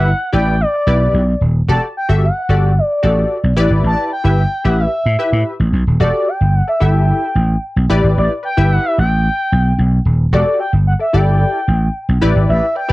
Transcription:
Already playing: G1 F#5
0.32 A1 E4 G4 B4 D5 G5
0.61 D5
0.87 B1 E4 G4 B4 D5
1.14 B1
1.41 D#1
1.68 E1 F#4 G4 A4 D5 A5
1.97 G5
2.09 G1 F#4 G4 A4 E5
2.24 F#5
2.49 G1 F#4 G4 A4 D5
2.79 D5
3.03 A1 F#4 G4 A4 D5
3.44 B1
3.56 A1 E4 G4 B4 D5
3.70 G#1
3.84 A1 A5
4.13 G5
4.24 G1 E4 G4 B4 E5
4.64 A1 E4 G4 B4 E5 F#5
4.80 E5
5.06 A2
5.19 E4 G4 B4 E5
5.33 A2
5.60 A1
5.73 B1
5.87 D#1
6.00 E1 F#4 G4 A4 D5
6.28 G5
6.41 G1
6.55 F#5
6.67 A4 D5 E5
6.80 G1 E4 G4 A4 E5 G5
7.35 A1
7.76 B1
7.90 A1 E4 G4 B4 D5
8.04 G#1
8.17 A1 D5
8.43 B4 D5 G5
8.57 G1 E4 G4 B4 E5
8.72 F#5
8.85 E5
8.98 A1 G5
9.52 B1
9.79 B1
10.05 D#1
10.32 E1 F#4 G4 A4 D5
10.60 G5
10.73 G1
10.87 F#5
10.99 A4 D5 E5
11.13 G1 E4 G4 A4 D5 G5
11.68 A1
12.09 B1
12.21 A1 E4 G4 B4 D5
12.36 G#1
12.49 A1 E5
12.75 B4 D5 G5
12.88 E4 G4 B4 D5

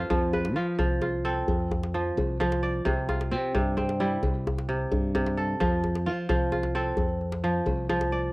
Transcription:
Already playing: C4 D4 G4 A4 B4 C5
0.00 F4
0.10 F2 F3, djembe bass
0.33 B4, djembe tone
0.45 djembe slap
0.56 F3 F4, djembe slap
0.79 C2 F3, djembe bass
1.02 F4, djembe tone
1.25 C4 A4
1.48 F2, djembe bass
1.60 djembe slap
1.71 djembe slap, djembe tone
1.83 djembe slap
1.94 F3
2.17 C2, djembe bass
2.40 F3, djembe slap, djembe tone
2.52 djembe slap
2.63 D5
2.85 C2 C3, djembe bass
3.09 F4, djembe tone
3.21 djembe slap
3.31 C3 C4, djembe slap
3.54 G2 C3, djembe bass
3.77 C4, djembe tone
3.89 djembe slap
4.00 G3 E4
4.23 C2, djembe bass
4.35 djembe slap
4.47 djembe slap, djembe tone
4.58 djembe slap
4.69 C3
4.91 G2, djembe bass
5.15 C3, djembe slap, djembe tone
5.26 djembe slap
5.37 A4
5.60 F2 F3, djembe bass
5.84 djembe tone
5.95 djembe slap
6.06 F3 F4, djembe slap
6.29 C2 F3, djembe bass
6.52 F4, djembe tone
6.63 djembe slap
6.75 C4 A4
6.97 F2, djembe bass
7.09 djembe slap
7.21 djembe slap
7.32 djembe slap
7.44 F3
7.66 C2, djembe bass
7.89 F3, djembe slap, djembe tone
8.01 djembe slap
8.12 D5

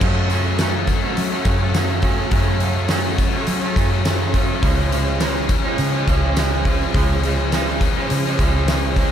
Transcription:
0.01 F#2 C#3 F#3 A3 C#4 A4 C#5, kick, crash
0.30 C#3 F#3 A3 C#4, open hi-hat, tambourine
0.59 F#2 C#3 F#3 A3 C#4, snare, open hi-hat, tambourine
0.75 F#3 A3 C#4
0.87 C#3 F#3, muted clean electric guitar stroke, kick, open hi-hat, tambourine
0.91 A3 C#4
1.04 F#3 A3 C#4
1.17 F#3, open hi-hat, tambourine
1.32 F#3 A3 C#4
1.45 F#2 C#3 F#3 A3, kick, open hi-hat, tambourine
1.49 C#4
1.60 F#3 A3 C#4
1.74 F#2 C#3 F#3 A3 C#4, snare, open hi-hat, tambourine
1.89 F#3 A3 C#4
2.02 C#3 F#3 A3 C#4, kick, open hi-hat, tambourine
2.17 F#3 A3 C#4
2.31 F#2 C#3 F#3 A3 C#4, kick, open hi-hat
2.60 C#3 F#3 A3 C#4, open hi-hat, tambourine
2.88 F#2 C#3 F#3 A3 C#4, snare, open hi-hat, tambourine
2.95 C#4
3.02 F#3 A3 C#4
3.09 F#3
3.18 C#3, muted clean electric guitar stroke, kick, open hi-hat, tambourine
3.23 F#3 A3 C#4
3.33 F#3 A3 C#4
3.47 F#3, open hi-hat, tambourine
3.62 F#3 A3 C#4
3.76 F#2 C#3 F#3 A3 C#4, kick, open hi-hat, tambourine
3.91 F#3 A3 C#4
4.04 F#2 C#3 F#3 A3 C#4, snare, open hi-hat, tambourine
4.19 F#3 A3 C#4
4.34 C#3 F#3 A3 C#4, kick, open hi-hat, tambourine
4.48 A3 C#4
4.53 F#3
4.63 C#2 C#3 F3 G#3 C#4 G#4, kick, open hi-hat
4.92 C#3 F3 G#3 C#4, open hi-hat, tambourine
5.20 C#3 F3 G#3 C#4, snare, open hi-hat, tambourine
5.35 F3 G#3 C#4, snare
5.48 C#3 F3 G#3 C#4, muted clean electric guitar stroke, kick, open hi-hat, tambourine
5.65 F3 G#3 C#4
5.78 C#3, open hi-hat, tambourine
5.95 F3 G#3 C#4
6.08 C#2 C#3 F3 G#3 C#4, kick, open hi-hat, tambourine
6.24 F3 G#3 C#4
6.36 C#3 F3 G#3 C#4, snare, open hi-hat, tambourine
6.52 F3 G#3 C#4
6.65 C#3 F3 G#3, kick, open hi-hat, tambourine
6.69 C#4
6.82 F3 G#3 C#4
6.94 C#2 C#3 F3 G#3 C#4, kick, open hi-hat, tambourine
7.23 C#3 F3 G#3 C#4, open hi-hat, tambourine
7.52 C#3 F3 G#3 C#4, snare, open hi-hat, tambourine
7.67 F3 G#3 C#4, snare
7.81 C#3 F3 G#3, muted clean electric guitar stroke, kick, open hi-hat, tambourine
7.86 C#4
7.97 F3 G#3 C#4
8.10 C#3, open hi-hat, tambourine
8.27 F3 G#3 C#4
8.39 C#2 C#3 F3 G#3, kick, open hi-hat, tambourine
8.43 C#4
8.55 F3 G#3 C#4
8.68 C#3 F3 G#3 C#4, snare, open hi-hat, tambourine
8.84 F3 G#3 C#4
8.96 C#3 F3 G#3, kick, open hi-hat, tambourine
9.01 C#4

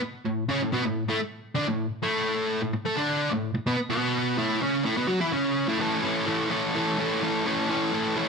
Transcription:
0.01 muted overdriven electric guitar stroke
0.26 A2
0.49 C#3 C#4
0.62 A2
0.72 B2 B3
0.84 A2
1.08 A2 A3
1.20 muted overdriven electric guitar stroke
1.55 D3 D4
1.67 A2
2.02 A2 A3
2.61 A2
2.73 muted overdriven electric guitar stroke
2.85 A3 A4
2.96 D3 D4
3.31 A2
3.55 muted overdriven electric guitar stroke
3.66 B2 B3
3.78 muted overdriven electric guitar stroke
3.90 B2 B3
4.38 A2 A3
4.62 C#3 C#4
4.85 A2 A3
4.97 B2 B3
5.08 F#3 F#4
5.20 E3 E4
5.32 C#3 C#4
5.67 A2 A3
5.79 A2 E3 A3 C#4 A4
6.02 A2 E3 A3 C#4 A4
6.26 A2 E3 A3 C#4 A4
6.49 A2 E3 A3 C#4 A4
6.74 A2 E3 A3 C#4 A4
6.98 A2 E3 A3 C#4 A4
7.21 A2 E3 A3 C#4 A4
7.45 A2 E3 A3 C#4 A4
7.69 A2 E3 A3 C#4 A4
7.92 A2 E3 A3 C#4 A4
8.16 A2 E3 A3 C#4 A4

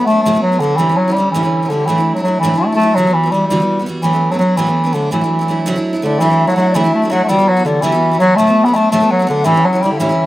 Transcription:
0.01 F#3
0.06 F#3 A3 B3
0.10 A3 D4
0.23 D2 A2 F#3 A3
0.27 A3 B3 D4
0.33 F#3 A3 B3 D4
0.43 F#3
0.52 F#3 A3 B3 D4
0.60 D3 F#3 A3 B3
0.64 D4
0.77 D2 A2 D3 E3 G3 C#4 E4
0.89 D3 G3 C#4 E4
0.97 F#3
1.08 D3 G3 C#4 E4
1.14 D3 G3
1.18 G3 C#4 E4
1.31 D2 E3
1.35 A2 D3 G3 C#4 E4
1.43 D3 G3 C#4 E4
1.63 D3 G3 C#4 E4
1.69 D3 G3 C#4 E4
1.86 D2 A2 E3 F#3 A3 D4 E4
1.98 F#3 A3 D4 E4
2.14 F#3 D4 E4
2.19 F#3 A3
2.23 F#3 A3
2.27 D4 E4
2.40 D2 A2 E3
2.44 F#3 A3 D4 E4
2.54 F#3 A3 D4 E4
2.59 A3
2.72 F#3 A3 D4 E4
2.80 F#3 A3 D4 E4
2.95 D2 D3 E3 F#3 G3 B3
2.99 F#4
3.07 E3 G3 B3 F#4
3.14 E3
3.23 E3 G3 B3 F#4
3.31 E3 G3 B3
3.36 F#4
3.48 D2 D3 E3 G3
3.52 B3 F#4
3.60 E3 G3 B3 F#4
3.79 E3 G3 B3 F#4
3.86 E3 G3 B3 F#4
4.02 D2 A2 E3 F#3 A3 B3 D4
4.13 F#3 A3 B3 D4
4.31 F#3 A3 B3 D4
4.39 F#3 A3 B3 D4
4.57 D2 A2 E3 F#3 A3 B3 D4
4.67 F#3 A3 B3 D4
4.84 F#3 A3 B3 D4
4.93 D3 F#3 A3 B3 D4
5.11 D2 A2 E3 F#3 A3 D4 E4
5.21 A3 D4 E4
5.26 F#3
5.39 F#3 A3 D4 E4
5.48 F#3 A3 D4 E4
5.66 D2 A2 F#3 A3 D4 E4
5.76 F#3 A3 D4 E4
5.93 F#3 A3 D4 E4
6.02 D3 F#3 A3 D4 E4 D5
6.20 D2 A2 E3 F#3 A3 D4 E4 E5
6.30 F#3 A3 D4 E4
6.47 F#3 A3 D4 E4 F#5
6.51 F#3
6.56 F#3 A3 D4 E4
6.60 F#5
6.70 D5
6.74 D2 A2 E3 F#3 A3 D4 E4 E5
6.84 F#3 A3 D4 E4
6.95 A3
7.02 F#3 A3 D4 E4
7.10 F#3 A3 D4 E4 F#5
7.24 A3
7.28 D2 D3 E3 G3 B3 F#4 G5
7.39 E3 G3 B3 F#4
7.48 F#3 F#5
7.57 E3 G3 B3 F#4
7.65 D3 E3 G3 B3 F#4 D5
7.82 D2 D3 E3 G3 B3 F#4 E5
7.92 E3 G3 B3 F#4
8.11 E3 G3 B3 F#4
8.20 E3 F#3 G3 B3 F#4 F#5
8.36 D2 A2 F#3 A3 B3 A5
8.40 A3 D4
8.47 F#3 A3 B3 D4
8.64 F#3 A3 B3 D4 B5
8.74 F#3 A3 B3 D4 A5
8.91 D2 A2 F#3 A3 B3 D4 A5
9.00 F#3 A3 B3 D4
9.11 F#3 F#5
9.19 F#3 A3 B3 D4
9.27 D3 F#3 A3 B3 D4
9.44 D2 A2 D3 E3 G3 C#4 E4 E5
9.54 D3 G3 C#4 E4
9.60 F#5 G5
9.65 F#3
9.73 D3 G3 C#4 E4
9.81 D3 G3 G5
9.85 C#4 E4
9.92 D3
9.98 D2 A2 D3 E3 G3 C#4 E5
10.02 E4
10.09 D3 G3 C#4 E4

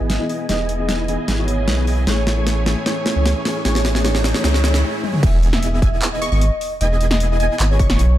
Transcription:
Already playing: B3 E4 G#4 D#5 G#5, riser
0.00 G#1
0.10 snare, closed hi-hat
0.19 E3 B3 D#4 G#4
0.29 B3 E4 G#4 D#5 G#5, open hi-hat
0.48 E1 E3 B3 D#4 E4 G#4 D#5 G#5, snare, closed hi-hat
0.69 closed hi-hat
0.78 E3 B3 D#4 G#4 D#5
0.89 snare, closed hi-hat
0.99 D#5
1.07 E3 B3 D#4 E4 G#4 D#5 G#5, closed hi-hat
1.28 G#1, snare, closed hi-hat
1.37 E3 B3 D#4 F#4 C#5
1.48 closed hi-hat
1.67 B1, snare, closed hi-hat
1.77 E3 B3 D#4 G#4
1.87 B3 E4 G#4 D#5 G#5, open hi-hat
2.06 A1 E3 A3 C#4 E4 G#4 C#5 G#5, snare, closed hi-hat
2.27 snare, closed hi-hat
2.36 E3 A3 C#4 G#4 C#5
2.47 snare, closed hi-hat
2.57 C#5
2.65 E3 A3 C#4 E4 G#4 C#5 G#5, snare, closed hi-hat
2.85 E3 A3 C#4 E4 G#4 C#5 G#5, snare, closed hi-hat
3.06 snare, closed hi-hat
3.15 C#2 E3 A3 C#4 G#4 C#5
3.26 snare, closed hi-hat
3.36 C#5
3.44 E3 A3 C#4 E4 G#4 C#5 G#5, snare, open hi-hat
3.64 A1 E3 A3 C#4 E4 G#4 C#5 G#5, snare, closed hi-hat, noise sweep
3.75 snare
3.85 snare, closed hi-hat
3.94 E3 A3 C#4 G#4 C#5, snare
4.03 E3 A3 C#4 E4 G#4 C#5 G#5, snare, closed hi-hat
4.15 snare
4.24 snare, closed hi-hat
4.34 E3 A3 C#4 G#4 C#5, snare
4.43 C#2 E3 A3 C#4 E4 G#4 C#5 G#5, snare, closed hi-hat
4.54 snare
4.63 E3 A3 C#4 E4 G#4 C#5 G#5, snare, closed hi-hat
4.74 snare
4.83 A3 E4 G#4 C#5 G#5
5.03 G#3 E4 G#4 C#5 G#5, high tom
5.14 mid tom
5.23 E1 B3 E4 G#4 D#5 E5 G#5, kick, closed hi-hat, crash, impact
5.43 closed hi-hat
5.53 E5, snare
5.63 closed hi-hat
5.73 E5
5.82 B3 E4 G#4 D#5 G#5, kick, closed hi-hat
6.02 clap, closed hi-hat
6.12 D#5
6.22 B3 E4 G#4 D#5 C#6, closed hi-hat
6.32 G#1 B3 E4 G#4 D#5 C#6
6.41 closed hi-hat
6.61 open hi-hat
6.81 E1 B3 E4 G#4 D#5 G#5, closed hi-hat
7.01 closed hi-hat
7.11 D#5, snare
7.20 closed hi-hat
7.30 D#5
7.40 B3 E4 G#4 D#5 G#5, closed hi-hat
7.60 G#1, clap, closed hi-hat
7.70 C#5
7.79 B3 E4 G#4 D#5 C#6, kick, closed hi-hat
7.90 B3 E4 G#4 D#5 C#6, snare
7.99 B1, closed hi-hat

